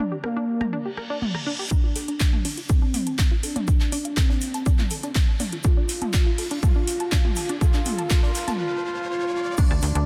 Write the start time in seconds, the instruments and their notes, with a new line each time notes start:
Already playing: analog synth lead D4
0.12 synth arpeggio sound G4
0.24 analog synth lead A#3, synth arpeggio sound A#4, cross-stick
0.36 synth arpeggio sound D4
0.61 synth arpeggio sound A#5, cross-stick, mid tom
0.73 synth arpeggio sound D4, reverse cymbal
0.85 synth arpeggio sound G4
0.97 synth arpeggio sound A#4, cross-stick
1.10 synth arpeggio sound D4
1.22 mid tom
1.35 synth arpeggio sound A#5, cross-stick
1.47 synth arpeggio sound D4
1.59 synth arpeggio sound G4
1.71 analog synth lead D4, synth arpeggio sound D4, kick, closed hi-hat, mid tom, riser, shaker
1.84 synth arpeggio sound F4
1.95 synth arpeggio sound A4, snare, open hi-hat, shaker
2.08 synth arpeggio sound D4, closed hi-hat
2.20 kick, snare, clap, closed hi-hat, shaker
2.33 synth arpeggio sound A5, mid tom
2.45 synth arpeggio sound D4, open hi-hat
2.57 synth arpeggio sound F4, closed hi-hat
2.69 analog synth lead C4, synth arpeggio sound A4, kick, closed hi-hat, shaker
2.82 synth arpeggio sound D4
2.94 snare, mid tom, open hi-hat, shaker
3.07 synth arpeggio sound A5, closed hi-hat
3.19 synth arpeggio sound D4, kick, snare, clap, closed hi-hat, shaker
3.31 synth arpeggio sound F4
3.43 analog synth lead D4, synth arpeggio sound A4, open hi-hat, shaker
3.56 synth arpeggio sound D4, closed hi-hat, mid tom
3.68 kick, closed hi-hat, shaker
3.80 synth arpeggio sound A5, clap, closed hi-hat
3.92 synth arpeggio sound D4, open hi-hat, shaker
4.05 synth arpeggio sound F4, closed hi-hat
4.17 analog synth lead C4, synth arpeggio sound A4, kick, snare, clap, closed hi-hat, mid tom, shaker
4.29 synth arpeggio sound D4, snare
4.41 open hi-hat, shaker
4.54 synth arpeggio sound A5, closed hi-hat
4.66 synth arpeggio sound D4, kick, closed hi-hat, shaker
4.79 synth arpeggio sound F4, clap, mid tom
4.90 synth arpeggio sound A4, open hi-hat, shaker
5.03 synth arpeggio sound D4, closed hi-hat
5.15 kick, snare, clap, closed hi-hat, shaker
5.28 synth arpeggio sound A5
5.40 synth arpeggio sound D4, mid tom, open hi-hat, shaker
5.52 synth arpeggio sound F4, closed hi-hat
5.64 analog synth lead F4, synth arpeggio sound A4, kick, closed hi-hat, shaker
5.77 synth arpeggio sound D4
5.89 snare, open hi-hat, shaker
6.02 synth arpeggio sound A5, closed hi-hat, mid tom
6.13 synth arpeggio sound D4, kick, snare, clap, closed hi-hat, shaker
6.26 synth arpeggio sound F4
6.38 synth arpeggio sound A4, open hi-hat
6.51 synth arpeggio sound D4, closed hi-hat
6.63 analog synth lead F4, synth arpeggio sound A4, kick, closed hi-hat, mid tom, shaker
6.76 synth arpeggio sound D4
6.87 snare, open hi-hat, shaker
7.00 synth arpeggio sound A5, closed hi-hat
7.12 synth arpeggio sound D4, kick, snare, clap, closed hi-hat, shaker
7.25 synth arpeggio sound F4, mid tom
7.36 synth arpeggio sound A4, open hi-hat, shaker
7.49 synth arpeggio sound D4, closed hi-hat
7.61 analog synth lead F4, synth arpeggio sound A4, kick, closed hi-hat, shaker
7.73 synth arpeggio sound D4, clap, closed hi-hat
7.85 mid tom, open hi-hat, shaker
7.99 synth arpeggio sound A5, closed hi-hat
8.10 analog synth lead F4, synth arpeggio sound A4, kick, snare, clap, closed hi-hat, shaker
8.23 synth arpeggio sound D4, snare
8.35 snare, open hi-hat, shaker
8.48 synth arpeggio sound A5, closed hi-hat, mid tom
8.60 analog synth lead F4
8.84 analog synth lead F4
9.09 analog synth lead F4
9.33 analog synth lead F4
9.58 synth arpeggio sound D4 D5, analog synth lead D4, kick, closed hi-hat, mid tom, crash, shaker
9.71 analog synth bass D2, synth arpeggio sound A5 A6, cross-stick
9.82 analog synth bass D2, snare, open hi-hat, shaker
9.95 analog synth bass D2, synth arpeggio sound D4 D5, closed hi-hat